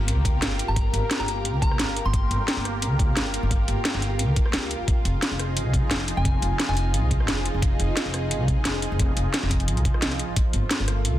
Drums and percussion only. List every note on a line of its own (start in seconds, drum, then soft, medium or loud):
0.08 closed hi-hat loud
0.25 kick loud
0.25 closed hi-hat medium
0.42 snare loud
0.42 closed hi-hat loud
0.59 closed hi-hat medium
0.76 kick loud
0.76 closed hi-hat medium
0.94 closed hi-hat medium
1.11 snare loud
1.11 closed hi-hat loud
1.20 snare soft
1.28 closed hi-hat medium
1.45 closed hi-hat medium
1.62 kick loud
1.62 closed hi-hat medium
1.71 cross-stick soft
1.79 snare loud
1.79 closed hi-hat medium
1.97 closed hi-hat medium
2.13 kick loud
2.13 closed hi-hat medium
2.31 closed hi-hat medium
2.48 snare loud
2.48 closed hi-hat medium
2.65 cross-stick soft
2.65 closed hi-hat medium
2.82 closed hi-hat medium
2.99 kick loud
2.99 closed hi-hat medium
3.17 snare loud
3.17 closed hi-hat medium
3.34 closed hi-hat medium
3.51 kick loud
3.51 closed hi-hat medium
3.68 closed hi-hat medium
3.85 snare loud
3.85 closed hi-hat medium
3.94 snare soft
4.02 closed hi-hat medium
4.19 closed hi-hat medium
4.36 kick loud
4.36 closed hi-hat medium
4.46 cross-stick soft
4.53 snare loud
4.53 closed hi-hat medium
4.71 closed hi-hat medium
4.88 kick loud
4.88 closed hi-hat medium
5.05 closed hi-hat medium
5.22 snare loud
5.22 closed hi-hat medium
5.39 cross-stick soft
5.39 closed hi-hat medium
5.57 closed hi-hat medium
5.74 kick loud
5.74 closed hi-hat medium
5.91 snare loud
5.91 closed hi-hat medium
6.08 closed hi-hat medium
6.25 kick loud
6.25 closed hi-hat medium
6.42 closed hi-hat medium
6.60 snare loud
6.60 closed hi-hat medium
6.69 snare soft
6.77 closed hi-hat medium
6.94 closed hi-hat medium
7.11 kick loud
7.11 closed hi-hat medium
7.20 cross-stick soft
7.28 snare loud
7.28 closed hi-hat medium
7.46 closed hi-hat medium
7.62 kick loud
7.62 closed hi-hat loud
7.80 closed hi-hat medium
7.97 snare loud
7.97 closed hi-hat loud
8.14 cross-stick soft
8.14 closed hi-hat medium
8.31 closed hi-hat medium
8.48 kick loud
8.48 closed hi-hat medium
8.65 snare loud
8.65 closed hi-hat loud
8.82 closed hi-hat medium
8.99 kick loud
8.99 closed hi-hat loud
9.17 closed hi-hat medium
9.34 snare loud
9.34 closed hi-hat loud
9.43 snare soft
9.51 kick medium
9.51 closed hi-hat medium
9.60 closed hi-hat soft
9.68 closed hi-hat loud
9.77 closed hi-hat soft
9.85 kick loud
9.85 closed hi-hat medium
9.94 cross-stick soft
10.02 snare loud
10.02 closed hi-hat loud
10.12 cross-stick soft
10.12 closed hi-hat soft
10.19 closed hi-hat medium
10.36 kick loud
10.36 closed hi-hat loud
10.53 closed hi-hat medium
10.71 snare loud
10.71 closed hi-hat loud
10.88 cross-stick medium
10.88 closed hi-hat medium
11.05 closed hi-hat loud